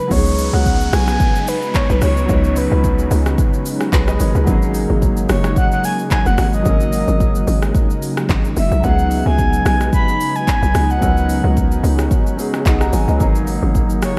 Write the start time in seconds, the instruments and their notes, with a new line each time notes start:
Already playing: soft synth lead B4
0.07 log drum bass C#2, analog synth pad C#3 F#3 G#3 B3 D#4, grand piano F#3 B3 C#4, kick, downlifter, shaker
0.12 grand piano D#4 G#4, soft synth lead C#5
0.26 shaker
0.38 open hi-hat, shaker
0.53 log drum bass C#2, soft synth lead F#5
0.66 kick, shaker
0.80 shaker
0.93 log drum bass B1, soft synth lead G#5, cross-stick, open hi-hat, shaker
1.08 cross-stick, shaker
1.20 kick, shaker
1.35 shaker
1.47 soft synth lead B4, open hi-hat, shaker
1.62 shaker
1.74 soft synth lead C#5, kick, clap, shaker
1.90 log drum bass B1, soft synth lead B4, shaker
2.02 log drum bass C#2, soft synth lead C#5, cross-stick, open hi-hat, shaker
2.17 shaker
2.26 log drum bass C#2, grand piano F#3 B3 C#4, analog synth pad C#4, kick, shaker
2.31 grand piano D#4 B4
2.44 soft synth lead C#5, shaker
2.56 soft synth lead B4, open hi-hat, shaker
2.72 log drum bass C#2
2.84 kick, shaker
2.99 shaker
3.11 log drum bass C#2, open hi-hat, shaker
3.26 cross-stick, shaker
3.38 kick, shaker
3.54 shaker
3.66 open hi-hat, shaker
3.81 cross-stick, shaker
3.93 log drum bass B1, grand piano G#4 B4, kick, clap, shaker
4.08 grand piano B4 D#5, cross-stick, shaker
4.20 log drum bass G#1, grand piano A#4 C#5, open hi-hat, shaker
4.35 log drum bass C#2, grand piano G#4 B4, shaker
4.44 log drum bass G#1, grand piano F#3 A#3 C#4, analog synth pad A#3 D#4, kick, shaker
4.49 grand piano D#4 G#4
4.62 shaker
4.74 open hi-hat, shaker
4.90 log drum bass G#1
5.02 kick, shaker
5.17 shaker
5.29 log drum bass F#1, soft synth lead C#5, cross-stick, open hi-hat, shaker
5.44 cross-stick, shaker
5.56 soft synth lead F#5, kick, shaker
5.72 soft synth lead F#5, shaker
5.84 soft synth lead G#5, open hi-hat, shaker
5.99 shaker
6.11 soft synth lead G#5, kick, clap, shaker
6.26 log drum bass F#1, soft synth lead F#5, shaker
6.38 log drum bass G#1, soft synth lead F#5, cross-stick, open hi-hat, shaker
6.53 soft synth lead D#5, shaker
6.62 log drum bass G#1, grand piano F#3 A#3 C#4, kick, shaker
6.68 grand piano D#4 A#4
6.80 shaker
6.93 open hi-hat, shaker
7.08 log drum bass G#1, shaker
7.20 kick, shaker
7.35 shaker
7.47 log drum bass G#1, open hi-hat, shaker
7.62 cross-stick, shaker
7.75 kick, shaker
7.90 shaker
8.02 open hi-hat, shaker
8.17 cross-stick, shaker
8.29 log drum bass G#1, kick, clap, shaker
8.45 shaker
8.57 log drum bass F#1, soft synth lead E5, open hi-hat, shaker
8.72 log drum bass B1, shaker
8.80 log drum bass C#2, grand piano F#3 B3 C#4, analog synth pad B3, kick, shaker
8.84 grand piano D#4 G#4, soft synth lead F#5
8.99 shaker
9.11 open hi-hat, shaker
9.26 log drum bass C#2, soft synth lead G#5
9.38 kick, shaker
9.53 shaker
9.65 log drum bass B1, soft synth lead G#5, cross-stick, open hi-hat, shaker
9.81 cross-stick, shaker
9.93 soft synth lead B5, kick, shaker
10.08 shaker
10.21 open hi-hat, shaker
10.36 soft synth lead G#5, shaker
10.48 kick, clap, shaker
10.62 log drum bass B1, shaker
10.75 log drum bass C#2, cross-stick, open hi-hat, shaker
10.90 soft synth lead F#5, shaker
10.99 log drum bass C#2, grand piano F#3 B3 C#4, analog synth pad C#4, kick, shaker
11.04 grand piano D#4 A#4
11.17 shaker
11.29 open hi-hat, shaker
11.44 log drum bass C#2
11.57 kick, shaker
11.72 shaker
11.84 log drum bass C#2, open hi-hat, shaker
11.99 cross-stick, shaker
12.11 kick, shaker
12.27 shaker
12.36 grand piano F#3 B3 C#4 D#4 G#4, open hi-hat, shaker
12.54 cross-stick, shaker
12.65 log drum bass B1, grand piano D#5 F#5, kick, clap, shaker
12.81 grand piano F#5 A#5, cross-stick, shaker
12.93 log drum bass G#1, grand piano G#5, open hi-hat, shaker
13.08 log drum bass C#2, grand piano B4 D#5, shaker
13.16 log drum bass G#1, analog synth pad C#3 F#3 G#3 A#3, grand piano F#3 A#3 C#4, kick, shaker
13.22 grand piano D#4 G#4
13.35 shaker
13.47 open hi-hat, shaker
13.63 log drum bass G#1
13.75 kick, shaker
13.90 shaker
14.02 log drum bass F#1, soft synth lead C#5, cross-stick, open hi-hat, shaker